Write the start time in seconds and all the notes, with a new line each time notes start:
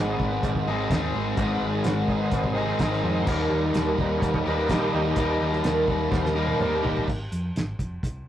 Already playing: G#1 G#2 D#3 G#3 C4 D#4 F#4 G#4
0.08 G#3 C4 D#4 G#4
0.19 G#1 G#3 C4 D#4 G#4, kick
0.27 B3
0.33 G#3 C4 D#4 G#4
0.43 G#1 G#3, kick, closed hi-hat, cowbell
0.55 G#3 C4 D#4 G#4, kick
0.59 G#3
0.66 G#1 D#3 G#3 C4 D#4
0.70 G#2 D#3 G#4
0.90 D#2 G#2 D#3 G#3 C4 D#4 G#4, kick, snare, closed hi-hat, cowbell
1.02 G#3 C4 D#4 G#4
1.13 G#1 G#2 D#3 G#3 C4 D#4 G#4
1.37 G#1 G#2 D#3 G#3 C4 D#4 G#4 D#5, kick, closed hi-hat, cowbell
1.53 B4
1.61 G#1
1.69 G#4
1.74 G#3 C4 D#4 G#4
1.84 G#1 G#2 D#3 G#3 C4 D#4 F#4 G#4, snare, closed hi-hat, cowbell
2.01 D#4
2.07 G#1 D#3 G#3 C4 D#4 G#4, kick
2.17 B3
2.31 G#1 G#3, kick, closed hi-hat, cowbell
2.43 C3 G#3 C4 D#4 G#4, kick
2.55 D#3 G#3 C4 D#4 G#4
2.59 G#2 G#3
2.79 G#1 G#2 D#3 G#3 C4 D#4 G#4, kick, snare, closed hi-hat, cowbell
2.91 G#3 C4 D#4 G#4, snare
3.03 F2 G#2 D#3 G#3 C4 D#4 G#4
3.21 C5 C#5
3.27 D#2 D#3 G3 A#3 D#4 G4 A#4, kick, cowbell, crash
3.48 D#2 D#3 G3 A#3
3.63 D#4 G4 A#4
3.74 D#2 D#3 A#3 D#4 G4 A#4, snare, closed hi-hat, cowbell
3.86 D#4 G4 A#4
3.98 D#2 A#3 D#4 G4 A#4 B4, kick
4.12 C#5
4.22 D#2, kick, closed hi-hat, cowbell
4.34 D#4 G4 A#4 C#5, kick
4.45 D#2 D#3 G3 A#3 D#4 G4 A#4 B4
4.68 A#1 D#3 G3 A#3 D#4 G4 A#4, kick, snare, closed hi-hat, cowbell
4.74 D#4
4.81 D#4 G4 A#4
4.91 D#2 A#3 D#4 G4 A#4
4.96 D#3
5.16 D#2 D#3 G3 A#3 D#4 G4 A#4, kick, closed hi-hat, cowbell
5.21 G4
5.41 D#2
5.51 D#4 G4 A#4, snare
5.62 D#2 D#3 A#3 D#4 G4 A#4, snare, closed hi-hat, cowbell
5.88 D#2 A#3 D#4 G4 A#4, kick
6.01 D#4 G4 A#4
6.11 D#2 C5, kick, snare, cowbell
6.24 D#4 G4 A#4, snare
6.31 D#5
6.37 D#3 G3 A#3 D#4 G4 A#4
6.44 C5, high tom
6.56 B4
6.60 D#2 D#3 G3 A#3 D#4 G4 A#4 C5, mid tom, cowbell
6.73 D#4 G4 A#4
6.84 G1 D#3 A#3 D#4 G4 A#4, floor tom
6.97 floor tom
7.08 G#1, kick, crash
7.32 F2, closed hi-hat
7.55 G#1, snare, closed hi-hat
7.79 F1, kick, closed hi-hat
8.03 C2, kick, closed hi-hat